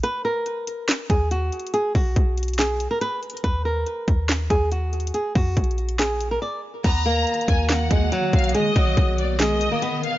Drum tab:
CC |------------------------------------------------------------------------------------------------|------------------------------------------------------------------------------------------------|------------------------------------------------------------------------------------------------|------------------------------------------------------------------------------------------------|
HH |x-----------------------x-----------x-----------x-----------x-----------x-----------x---x---x---|x-----------o-----------x-----------x--x--x--x--x-----------x-----------x-----------x---x---x---|x-----------------------x-----------x-----------x-----------x-----------x-----------x---x---x---|x-----------o-----------x---x---x---x-----x-----x-----------x-----------------------------------|
CP |------------------------------------------------x-----------------------------------------------|------------------------------------------------x-----------------------------------------------|------------------------------------------------x-----------------------------------------------|------------------------------------------------x-----------------------------------------------|
SD |------------------------------------------------o-----------------------------------------------|------------------------------------------------o-----------------------------------------------|------------------------------------------------o-----------------------------------------------|------------------------------------------------o-----------------------------------------------|
BD |------------------------------------------------------------o-----------------------------------|------------o-----------o-----------------------------------------------------------------------|o-----------------------------------o-----------------------o-----------------------------------|------------o-----------o-----------------------------------------------------------------------|

CC |x-----------------------------------------------------------------------------------------------|------------------------------------------------------------------------------------------------|
HH |x-----------------------x---x---x---x-----------x-----------x-----------x-----------x--x--x--x--|x-----------x-----------x-----------x-----------x-----------x-----------x-----------x-----------|
CP |------------------------------------------------x-----------------------------------------------|------------------------------------------------x-----------------------------------------------|
SD |------------------------------------------------o-----------------------------------------------|------------------------------------------------o-----------------------------------------------|
BD |o-----------------------------------o-----------------------o-----------------------o-----------|------------o-----------o-----------------------------------------------------------------------|